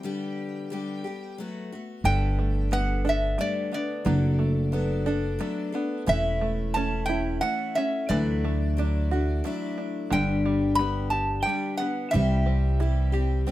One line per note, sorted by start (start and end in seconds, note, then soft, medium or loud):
0.00 0.69 D3 medium
0.00 1.37 G5 medium
0.04 0.70 G3 medium
0.04 0.71 B3 medium
0.04 0.71 G4 medium
0.70 1.04 D3 soft
0.70 1.04 G3 medium
0.70 1.05 B3 medium
0.70 1.03 G4 medium
1.04 1.39 G3 soft
1.04 1.38 B3 soft
1.04 1.37 G4 soft
1.38 1.71 F#3 medium
1.38 1.72 A3 medium
1.38 1.72 B3 medium
1.38 1.71 F#4 medium
1.72 2.05 A3 soft
1.72 2.04 B3 soft
1.72 2.05 F#4 soft
2.04 3.35 G1 medium
2.04 4.06 D3 medium
2.04 2.70 G3 medium
2.04 2.71 B3 medium
2.04 2.73 D4 medium
2.04 2.73 A4 medium
2.04 2.72 G5 medium
2.39 3.38 A3 soft
2.71 3.05 G3 soft
2.71 3.05 B3 soft
2.71 3.71 B3 medium
2.71 3.05 D4 medium
2.71 3.04 A4 soft
2.71 3.07 F#5 medium
3.05 3.38 B3 soft
3.05 4.13 D4 medium
3.05 3.39 D4 soft
3.05 3.39 A4 soft
3.09 3.42 E5 medium
3.38 3.72 G3 medium
3.38 4.38 A3 medium
3.38 3.73 B3 medium
3.38 3.72 D4 medium
3.38 3.70 A4 medium
3.38 3.73 D5 medium
3.72 4.13 B3 soft
3.72 4.05 B3 soft
3.72 4.05 D4 soft
3.72 4.06 A4 soft
3.72 5.71 D5 medium
4.05 5.37 F#1 medium
4.05 4.71 F#3 medium
4.05 6.07 F#3 medium
4.05 4.72 B3 medium
4.05 4.72 D4 medium
4.05 4.74 A4 medium
4.39 5.40 A3 soft
4.72 5.06 F#3 medium
4.72 5.73 B3 medium
4.72 5.07 B3 medium
4.72 5.06 D4 medium
4.72 5.05 A4 medium
5.06 5.38 B3 soft
5.06 6.14 D4 medium
5.06 5.39 D4 soft
5.06 5.39 A4 medium
5.39 5.73 F#3 medium
5.39 6.41 A3 medium
5.39 5.74 B3 medium
5.39 5.72 D4 medium
5.39 5.71 A4 medium
5.72 6.15 B3 medium
5.72 6.07 B3 soft
5.72 6.07 D4 soft
5.72 6.07 A4 soft
6.06 7.38 E1 medium
6.06 6.74 E3 medium
6.06 8.09 E3 medium
6.06 6.76 A3 medium
6.06 6.75 C#4 medium
6.06 6.77 E4 medium
6.06 6.78 E5 medium
6.41 7.41 A3 soft
6.74 7.09 E3 soft
6.74 7.09 A3 medium
6.74 7.08 C#4 medium
6.74 7.76 C#4 medium
6.74 7.07 E4 medium
6.74 7.05 A5 medium
7.06 7.42 C#4 soft
7.06 7.42 E4 soft
7.06 8.16 E4 medium
7.06 7.41 G5 medium
7.10 7.41 A3 soft
7.41 7.75 E3 medium
7.41 8.16 A3 medium
7.41 7.76 A3 medium
7.41 7.76 C#4 medium
7.41 7.75 E4 medium
7.41 7.76 F#5 medium
7.75 8.17 C#4 medium
7.75 8.10 C#4 soft
7.75 8.10 E4 soft
7.75 8.10 E5 medium
7.79 8.09 A3 soft
8.09 9.40 D2 medium
8.09 8.77 D3 medium
8.09 10.10 E3 medium
8.09 8.76 F#3 medium
8.09 8.77 A3 medium
8.09 8.78 D4 medium
8.09 8.77 E4 medium
8.09 9.73 D5 medium
8.44 9.44 A3 soft
8.77 9.10 F#3 soft
8.77 9.11 A3 medium
8.77 9.11 D4 soft
8.77 9.77 D4 medium
8.77 9.10 E4 soft
9.11 9.44 A3 soft
9.11 9.45 D4 soft
9.11 9.44 E4 soft
9.11 10.18 F#4 medium
9.44 10.11 F#3 medium
9.44 10.18 A3 medium
9.44 10.12 A3 medium
9.44 10.12 D4 medium
9.44 10.13 E4 medium
9.78 10.18 D4 soft
10.10 11.42 G1 medium
10.10 10.79 G2 medium
10.10 12.12 D3 medium
10.10 10.79 D3 medium
10.10 10.78 G3 medium
10.10 10.78 B3 medium
10.10 10.79 D4 medium
10.10 10.80 G4 medium
10.10 10.81 G5 medium
10.46 11.45 G3 soft
10.75 11.46 G3 soft
10.75 11.79 B3 medium
10.75 11.10 B5 medium
10.79 11.46 B3 soft
10.79 11.47 D4 medium
10.79 11.49 G4 medium
11.10 12.52 G4 medium
11.10 11.42 A5 medium
11.43 12.13 G3 soft
11.43 11.80 G3 medium
11.43 11.77 G5 medium
11.47 11.80 B3 medium
11.47 11.79 D4 medium
11.47 11.78 G4 medium
11.77 12.20 B3 soft
11.77 12.14 B3 soft
11.77 12.13 D4 soft
11.77 12.13 G4 soft
11.77 12.13 F#5 medium
11.82 12.13 G3 soft
12.11 13.44 C2 medium
12.11 12.80 C3 medium
12.11 12.79 E3 medium
12.11 13.51 G3 medium
12.11 12.80 G3 medium
12.11 12.81 C4 medium
12.11 13.51 E5 medium
12.15 12.82 G4 medium
12.46 13.46 C4 medium
12.80 13.13 E3 soft
12.80 13.14 G3 medium
12.80 13.12 C4 soft
12.80 13.51 E4 medium
12.80 13.11 G4 medium
13.12 13.46 G3 soft
13.12 13.47 C4 soft
13.12 13.46 G4 soft
13.12 13.51 G4 medium
13.47 13.51 E3 medium
13.47 13.51 G3 medium
13.47 13.51 C4 medium